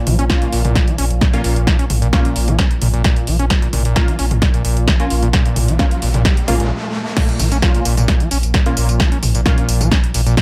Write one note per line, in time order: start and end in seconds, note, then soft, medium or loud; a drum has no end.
0.00 6.71 A#2 medium
0.00 6.71 F3 medium
0.07 0.18 A#1 loud
0.07 0.17 F3 medium
0.07 mid tom loud
0.07 open hi-hat loud
0.19 0.29 A#1 medium
0.19 0.25 C#4 medium
0.19 closed hi-hat medium
0.30 0.51 A#3 medium
0.30 0.51 C#4 medium
0.30 0.51 F4 loud
0.30 kick loud
0.30 snare loud
0.30 closed hi-hat medium
0.42 0.48 A#2 medium
0.42 closed hi-hat soft
0.52 0.64 A#1 medium
0.52 0.62 A#2 loud
0.52 open hi-hat loud
0.65 0.75 A#1 medium
0.65 0.89 A#2 medium
0.65 closed hi-hat medium
0.65 mid tom loud
0.75 kick loud
0.75 snare loud
0.75 closed hi-hat medium
0.87 0.96 F3 medium
0.87 closed hi-hat soft
0.98 1.10 A#1 loud
0.98 1.05 C#4 medium
0.98 open hi-hat loud
1.11 1.21 A#1 medium
1.11 closed hi-hat soft
1.21 1.28 A#2 medium
1.21 kick loud
1.21 snare loud
1.21 closed hi-hat medium
1.33 1.42 A#2 loud
1.33 1.55 A#3 medium
1.33 1.55 C#4 medium
1.33 1.55 F4 medium
1.33 closed hi-hat soft
1.44 1.56 A#1 loud
1.44 1.68 A#2 medium
1.44 open hi-hat loud
1.56 1.67 A#1 medium
1.56 closed hi-hat soft
1.67 1.77 F3 medium
1.67 kick loud
1.67 snare loud
1.67 closed hi-hat medium
1.79 1.85 C#4 medium
1.79 closed hi-hat medium
1.90 2.02 A#1 loud
1.90 mid tom medium
1.90 open hi-hat loud
2.02 2.13 A#1 medium
2.02 2.08 A#2 medium
2.02 closed hi-hat medium
2.13 2.23 A#2 loud
2.13 2.27 A#3 medium
2.13 2.27 C#4 medium
2.13 2.27 F4 loud
2.13 kick loud
2.13 snare loud
2.13 closed hi-hat medium
2.25 2.49 A#2 medium
2.25 closed hi-hat medium
2.36 2.47 A#1 loud
2.36 open hi-hat loud
2.48 2.58 A#1 medium
2.48 2.57 F3 medium
2.48 closed hi-hat medium
2.48 mid tom medium
2.59 2.65 C#4 medium
2.59 kick loud
2.59 snare loud
2.59 closed hi-hat medium
2.71 closed hi-hat medium
2.82 2.93 A#1 loud
2.82 2.88 A#2 medium
2.82 mid tom medium
2.82 open hi-hat loud
2.94 3.04 A#1 medium
2.94 3.03 A#2 loud
2.94 closed hi-hat soft
3.04 3.29 A#2 medium
3.04 kick loud
3.04 snare loud
3.04 closed hi-hat medium
3.16 closed hi-hat soft
3.27 3.39 A#1 loud
3.27 3.37 F3 medium
3.27 open hi-hat loud
3.39 3.50 A#1 medium
3.39 3.45 C#4 medium
3.39 closed hi-hat soft
3.50 kick loud
3.50 snare loud
3.50 closed hi-hat medium
3.50 riser medium
3.62 3.68 A#2 medium
3.62 closed hi-hat soft
3.73 3.85 A#1 loud
3.73 3.83 A#2 loud
3.73 mid tom medium
3.73 open hi-hat loud
3.85 3.96 A#1 medium
3.85 4.10 A#2 medium
3.85 closed hi-hat medium
3.96 4.18 A#3 medium
3.96 4.18 C#4 medium
3.96 4.18 F4 loud
3.96 kick loud
3.96 snare loud
3.96 closed hi-hat medium
4.08 4.17 F3 medium
4.08 closed hi-hat medium
4.19 4.31 A#1 loud
4.19 4.26 C#4 medium
4.19 open hi-hat loud
4.31 4.42 A#1 medium
4.31 closed hi-hat medium
4.31 mid tom medium
4.42 4.48 A#2 medium
4.42 kick loud
4.42 snare loud
4.42 closed hi-hat medium
4.54 4.63 A#2 loud
4.54 closed hi-hat medium
4.65 4.76 A#1 loud
4.65 4.89 A#2 medium
4.65 open hi-hat loud
4.77 4.87 A#1 medium
4.77 closed hi-hat medium
4.88 4.98 F3 medium
4.88 kick loud
4.88 snare loud
4.88 closed hi-hat medium
5.00 5.21 A#3 medium
5.00 5.21 C#4 medium
5.00 5.06 C#4 medium
5.00 5.21 F4 medium
5.00 closed hi-hat medium
5.10 5.22 A#1 loud
5.10 open hi-hat loud
5.23 5.33 A#1 medium
5.23 5.29 A#2 medium
5.23 closed hi-hat soft
5.33 5.43 A#2 loud
5.33 kick loud
5.33 snare loud
5.33 closed hi-hat medium
5.46 5.70 A#2 medium
5.46 closed hi-hat medium
5.56 5.68 A#1 loud
5.56 mid tom medium
5.56 open hi-hat loud
5.68 5.79 A#1 medium
5.68 5.77 F3 medium
5.68 closed hi-hat medium
5.79 5.93 A#3 medium
5.79 5.93 C#4 medium
5.79 5.86 C#4 medium
5.79 5.93 F4 loud
5.79 kick loud
5.79 snare loud
5.79 closed hi-hat medium
5.91 closed hi-hat medium
6.02 6.14 A#1 loud
6.02 6.09 A#2 medium
6.02 open hi-hat loud
6.14 6.25 A#1 medium
6.14 6.23 A#2 loud
6.14 closed hi-hat medium
6.14 mid tom medium
6.25 kick loud
6.25 snare loud
6.25 closed hi-hat medium
6.37 closed hi-hat medium
6.48 6.59 A#1 loud
6.48 6.58 A#3 medium
6.48 6.58 C#4 medium
6.48 6.58 F4 loud
6.48 mid tom medium
6.48 open hi-hat loud
6.60 6.71 A#1 medium
6.60 6.71 A#1 loud
6.60 closed hi-hat medium
7.17 10.42 A#2 medium
7.17 7.41 A#2 medium
7.17 10.42 F3 medium
7.17 kick loud
7.17 snare loud
7.17 closed hi-hat medium
7.17 crash loud
7.17 tambourine soft
7.29 closed hi-hat medium
7.39 7.51 A#1 loud
7.39 7.50 F3 medium
7.39 mid tom medium
7.39 open hi-hat loud
7.39 tambourine medium
7.52 7.62 A#1 medium
7.52 7.58 C#4 medium
7.52 closed hi-hat medium
7.52 tambourine soft
7.62 7.84 A#3 medium
7.62 7.84 C#4 medium
7.62 7.84 F4 loud
7.62 kick loud
7.62 snare loud
7.62 closed hi-hat medium
7.62 tambourine soft
7.74 7.80 A#2 medium
7.74 closed hi-hat medium
7.85 7.97 A#1 loud
7.85 7.95 A#2 loud
7.85 open hi-hat loud
7.85 tambourine medium
7.97 8.08 A#1 medium
7.97 8.22 A#2 medium
7.97 closed hi-hat medium
7.97 mid tom medium
7.97 tambourine soft
8.08 kick loud
8.08 snare loud
8.08 closed hi-hat medium
8.08 tambourine soft
8.20 8.29 F3 medium
8.20 closed hi-hat medium
8.31 8.43 A#1 loud
8.31 8.38 C#4 medium
8.31 open hi-hat loud
8.31 tambourine medium
8.43 8.54 A#1 medium
8.43 closed hi-hat medium
8.43 tambourine soft
8.54 8.61 A#2 medium
8.54 kick loud
8.54 snare loud
8.54 closed hi-hat medium
8.54 tambourine soft
8.66 8.75 A#2 loud
8.66 8.88 A#3 medium
8.66 8.88 C#4 medium
8.66 8.88 F4 medium
8.66 closed hi-hat medium
8.77 8.88 A#1 loud
8.77 9.01 A#2 medium
8.77 open hi-hat loud
8.77 tambourine medium
8.89 9.00 A#1 medium
8.89 closed hi-hat medium
8.89 tambourine soft
9.00 9.10 F3 medium
9.00 kick loud
9.00 snare loud
9.00 closed hi-hat medium
9.00 tambourine soft
9.12 9.18 C#4 medium
9.12 closed hi-hat medium
9.23 9.34 A#1 loud
9.23 mid tom medium
9.23 open hi-hat loud
9.23 tambourine medium
9.35 9.45 A#1 medium
9.35 9.41 A#2 medium
9.35 closed hi-hat medium
9.35 tambourine soft
9.46 9.56 A#2 loud
9.46 9.60 A#3 medium
9.46 9.60 C#4 medium
9.46 9.60 F4 loud
9.46 kick loud
9.46 snare loud
9.46 closed hi-hat medium
9.46 tambourine soft
9.58 9.82 A#2 medium
9.58 closed hi-hat medium
9.68 9.80 A#1 medium
9.68 open hi-hat loud
9.68 tambourine medium
9.81 9.91 A#1 medium
9.81 9.90 F3 medium
9.81 closed hi-hat medium
9.81 mid tom medium
9.81 tambourine soft
9.91 9.98 C#4 medium
9.91 kick loud
9.91 snare loud
9.91 closed hi-hat medium
9.91 tambourine soft
10.04 closed hi-hat medium
10.14 10.26 A#1 loud
10.14 10.21 A#2 medium
10.14 open hi-hat loud
10.14 tambourine medium
10.26 10.37 A#1 medium
10.26 10.35 A#2 loud
10.26 closed hi-hat medium
10.26 tambourine soft
10.37 kick loud
10.37 snare loud
10.37 closed hi-hat medium
10.37 tambourine soft